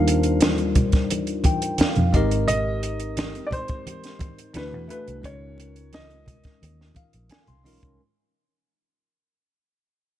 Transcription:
Already playing: D#2 G3 D4 D#4 F4 A#4 C5 F5
0.08 closed hi-hat
0.23 closed hi-hat
0.41 snare, closed hi-hat, muted conga, high conga
0.58 closed hi-hat
0.75 kick, closed hi-hat, low conga
0.92 kick, snare, closed hi-hat
1.11 closed hi-hat, high conga
1.27 closed hi-hat
1.44 G5, kick, closed hi-hat, muted conga, high conga
1.62 closed hi-hat
1.78 F5, muted fingered electric bass stroke, snare, closed hi-hat, muted conga, high conga
1.95 F2, closed hi-hat, low conga
2.13 G#1 G#3 C4 D#4 G4 A#4 D#5, kick, closed hi-hat, high conga
2.31 closed hi-hat
2.48 D#5, closed hi-hat, muted conga, low conga
2.83 closed hi-hat
3.00 closed hi-hat
3.17 snare, closed hi-hat, muted conga, high conga
3.35 closed hi-hat
3.47 D5
3.51 C5, kick, closed hi-hat, muted conga, low conga
3.68 kick, closed hi-hat
3.87 closed hi-hat, muted conga, high conga
4.04 snare, closed hi-hat
4.19 kick, closed hi-hat, muted conga, high conga
4.39 closed hi-hat
4.54 D2 A3 D4 E4 F#4 B4, snare, closed hi-hat, muted conga, high conga
4.58 B4
4.73 E2, low conga
4.88 A3 D4 E4 F#4 B4, closed hi-hat, high conga
5.08 C2, closed hi-hat
5.22 C#2 G#3 C#4 D#4 F4 C#5, kick, closed hi-hat, muted conga, low conga
5.26 A#4
5.58 closed hi-hat, muted conga
5.76 closed hi-hat
5.93 D#5, snare, closed hi-hat, muted conga, high conga
6.10 closed hi-hat
6.26 kick, closed hi-hat, low conga
6.44 kick, snare, closed hi-hat
6.62 D#2, closed hi-hat, high conga
6.81 snare
6.94 F5, kick, closed hi-hat, high conga
7.13 A#1, closed hi-hat
7.29 G#5, snare, closed hi-hat, muted conga, high conga
7.47 C2 C6, closed hi-hat, low conga
7.64 B1 G#3 C#4 D#4 F4 A#4, open hi-hat, muted conga, high conga
7.83 C2, kick, closed hi-hat

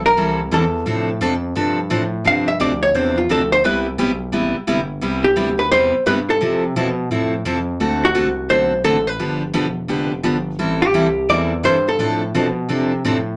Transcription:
Already playing: B1
0.06 A#4
0.17 C2 E3 G3 C4 E4 A4
0.51 E2 E3 G3 C4 E4 A4
0.86 A2 C3 F3 C4 D4 A4
1.21 F2 C3 F3 C4 D4 A4
1.55 G2 C3 F3 C4 D4 A4
1.90 A2 C3 F3 C4 D4 A4
2.24 G2 C3 F3 C4 D4 G4 F5
2.48 E5
2.60 D2 C3 F3 C4 D4 G4 D5
2.83 C#5
2.94 E2 C3 F3 C4 D4 G4 C5
3.18 F4
3.29 D2 C3 F3 C4 D4 G4 A4
3.52 C5
3.64 C2 C3 G3 B3 E4 G4 B4
3.98 B1 C3 G3 B3 E4 G4
4.32 A1 C3 G3 B3 E4 G4
4.55 A1
4.67 G1 C3 G3 B3 E4 G4
5.01 C2 C3 G3 B3 E4 G4
5.24 G4
5.36 D2 C3 G3 B3 E4 G4
5.59 B4
5.71 E2 C3 G3 B3 E4 G4 C5
5.94 E2
6.06 G2 C3 G3 B3 E4 G4 B4
6.30 A4
6.41 C3 F3 C4 E4 A4
6.76 B2 C3 F3 C4 E4 A4
7.10 A2 C3 F3 C4 E4 A4
7.45 F2 C3 F3 C4 E4 A4
7.80 D2 D3 A3 C4 F#4 A4
8.05 F#4
8.15 C2 D3 A3 C4 F#4 A4
8.49 B1 D3 A3 C4 F#4 A4 C5
8.84 A1 D3 A3 C4 F#4 A4
9.07 B4
9.19 G1 D3 F3 B3 D4 G4
9.53 E1 D3 F3 B3 D4 G4
9.88 F1 D3 F3 B3 D4 G4
10.23 G1 D3 F3 B3 D4 G4
10.59 A1 E3 G3 C4 E4 A4
10.82 G4
10.94 C2 E3 G3 C4 E4 A4
11.29 E2 E3 G3 C4 E4 A4 D5
11.63 G2 E3 G3 C4 E4 A4 C5
11.89 A4
11.99 A2 C3 F3 C4 D4 A4
12.35 B2 C3 F3 C4 D4 A4
12.69 C3 F3 C4 D4 A4
13.05 A2 C3 F3 C4 D4 A4

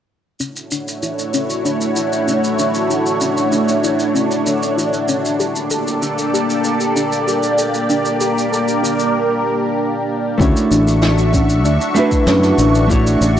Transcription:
0.39 A3 C#4 D4 E4 F#4 C#5, shaker
0.56 shaker
0.71 D4, shaker
0.88 shaker
1.03 E4, shaker
1.19 shaker
1.34 C#4, shaker
1.50 shaker
1.65 D4, shaker
1.81 shaker
1.96 E4, shaker
2.13 shaker
2.28 C#4, shaker
2.44 shaker
2.59 D4, shaker
2.75 shaker
2.90 E4, shaker
3.06 shaker
3.21 C#4, shaker
3.37 shaker
3.52 D4, shaker
3.69 shaker
3.84 E4, shaker
3.99 shaker
4.15 C#4, shaker
4.31 shaker
4.46 D4, shaker
4.63 shaker
4.77 E4, shaker
4.93 shaker
5.08 C#4, shaker
5.25 shaker
5.39 A#3 G4 A4 D5, shaker
5.56 shaker
5.71 A4, shaker
5.88 shaker
6.02 D4, shaker
6.18 shaker
6.34 G4, shaker
6.50 shaker
6.64 A4, shaker
6.80 shaker
6.96 D4, shaker
7.12 shaker
7.27 G4, shaker
7.43 shaker
7.58 A4, shaker
7.74 shaker
7.90 D4 A#4, shaker
8.05 shaker
8.21 G4, shaker
8.38 shaker
8.52 A4, shaker
8.68 shaker
8.83 D4, shaker
9.00 shaker
10.38 D2 A3 C#4 D4 E4 F#4 E5 C#6, kick, shaker
10.42 C#5
10.56 shaker
10.71 A1 D4, shaker
10.88 shaker
11.02 E4, snare, shaker
11.18 shaker
11.33 C#4, kick, shaker
11.49 shaker
11.65 D2 D4, shaker
11.81 shaker
11.94 A3 D4 E4 F#4, shaker
11.99 B4
12.11 kick, shaker
12.27 F#2 C#4, snare, shaker
12.43 snare, shaker
12.58 A1 D4, shaker
12.75 shaker
12.87 A3 D4 E4 F#4 F#5, kick, shaker
12.92 C#5
13.07 shaker
13.21 A1 C#4, shaker

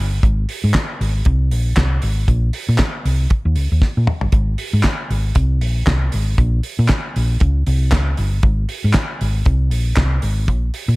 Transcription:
0.00 G1
0.23 G#1, kick, closed hi-hat
0.49 open hi-hat
0.64 G#2
0.74 kick, snare, clap, closed hi-hat
1.01 G#1, open hi-hat
1.25 C2, kick, closed hi-hat
1.51 A#1, open hi-hat
1.77 C2, kick, snare, clap, closed hi-hat
2.02 G#1, open hi-hat
2.28 A#1, kick, closed hi-hat
2.53 open hi-hat
2.69 A#2
2.78 kick, snare, clap, closed hi-hat
3.05 C2, open hi-hat
3.30 kick, closed hi-hat
3.45 D#2
3.56 C#2, open hi-hat
3.72 D#2
3.82 kick, snare
3.97 A#2
4.07 mid tom
4.21 G1, floor tom
4.32 G#1, kick, closed hi-hat
4.58 open hi-hat
4.73 G#2
4.83 kick, snare, clap, closed hi-hat
5.10 G#1, open hi-hat
5.35 C2, kick, closed hi-hat
5.61 A#1, open hi-hat
5.87 C2, kick, snare, clap, closed hi-hat
6.12 G#1, open hi-hat
6.38 A#1, kick, closed hi-hat
6.63 open hi-hat
6.79 A#2
6.88 kick, snare, clap, closed hi-hat
7.16 A#1, open hi-hat
7.40 C#2, kick, closed hi-hat
7.67 C2, open hi-hat
7.92 C#2, kick, snare, clap, closed hi-hat
8.17 G1, open hi-hat
8.43 G#1, kick, closed hi-hat
8.69 open hi-hat
8.84 G#2
8.93 kick, snare, clap, closed hi-hat
9.21 G#1, open hi-hat
9.45 C2, kick, closed hi-hat
9.71 A#1, open hi-hat
9.96 C2, kick, snare, clap, closed hi-hat
10.22 G#1, open hi-hat
10.48 A#1, kick, closed hi-hat
10.74 open hi-hat
10.88 A#2

